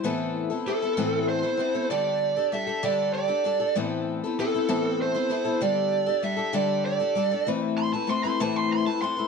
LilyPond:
<<
  \new Staff \with { instrumentName = "Lead electric guitar" } { \time 6/8 \key a \minor \tempo 4. = 65 r4 a'4 c''4 | d''4 e''8 d''8 d''4 | r4 a'4 c''4 | d''4 e''8 d''8 d''4 |
r8 c'''16 a''16 c'''16 c'''16 a''16 c'''16 c'''16 a''16 c'''8 | }
  \new Staff \with { instrumentName = "Twelve-string acoustic guitar" } { \time 6/8 \key a \minor <a, e b c' e' a'>8. <b c' e' a'>16 <b c' e' a'>16 <b c' e' a'>16 <a, e b c' e' a'>8. <b c' e' a'>16 <b c' e' a'>16 <b c' e' a'>16 | <d g d' g' a'>8. <d' g' a'>16 <g d' g' a'>16 <d' g' a'>16 <d g d' g' a'>8. <d' g' a'>16 <g d' g' a'>16 <d' g' a'>16 | <a, e b c' e' a'>8. <b c' e' a'>16 <b c' e' a'>16 <b c' e' a'>16 <a, e b c' e' a'>8. <b c' e' a'>16 <b c' e' a'>16 <b c' e' a'>16 | <d g d' g' a'>8. <d' g' a'>16 <g d' g' a'>16 <d' g' a'>16 <d g d' g' a'>8. <d' g' a'>16 <g d' g' a'>16 <d' g' a'>16 |
<a, e a c' e' b'>8. <a c' e' b'>16 <a c' e' b'>16 <a c' e' b'>16 <a, e a c' e' b'>8. <a c' e' b'>16 <a c' e' b'>16 <a c' e' b'>16 | }
>>